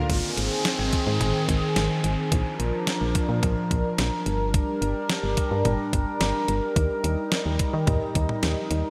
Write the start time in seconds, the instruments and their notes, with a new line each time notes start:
0.09 fm bass G#1, analog synth pad D#3 C4 G#4, kick, closed hi-hat, downlifter
0.37 fm bass G#1, closed hi-hat
0.65 snare, closed hi-hat
0.79 fm bass G#1
0.93 kick, closed hi-hat
1.07 fm bass G#2
1.21 fm bass G#1, closed hi-hat, mid tom
1.49 fm bass G#1, kick, closed hi-hat
1.76 fm bass G#1, snare, closed hi-hat
2.04 fm bass G#1, closed hi-hat
2.32 fm bass A#1, analog synth pad F3 D4 A#4, kick, closed hi-hat
2.60 fm bass A#1, closed hi-hat
2.87 snare, closed hi-hat
3.01 fm bass A#1
3.15 kick, closed hi-hat
3.29 fm bass A#2
3.43 fm bass A#1, kick, closed hi-hat, mid tom
3.71 fm bass A#1, kick, closed hi-hat
3.98 fm bass A#1, snare, closed hi-hat
4.26 fm bass G1, analog synth pad G3 D4, closed hi-hat
4.54 kick, closed hi-hat
4.82 fm bass G1, closed hi-hat
5.10 snare, closed hi-hat
5.23 fm bass G1
5.37 kick, closed hi-hat
5.51 fm bass G2
5.65 fm bass G1, closed hi-hat, mid tom
5.93 fm bass G1, kick, closed hi-hat
6.21 fm bass G1, snare, closed hi-hat
6.48 fm bass G1, closed hi-hat
6.76 fm bass D#2, analog synth pad G3 D#4, kick, closed hi-hat
7.04 fm bass D#2, closed hi-hat
7.32 snare, closed hi-hat
7.46 fm bass D#2
7.59 kick, closed hi-hat
7.74 fm bass D#3
7.87 fm bass D#2, kick, closed hi-hat, mid tom
8.15 fm bass D#2, kick, closed hi-hat
8.29 mid tom
8.43 fm bass D#2, snare, closed hi-hat
8.71 fm bass D#2, closed hi-hat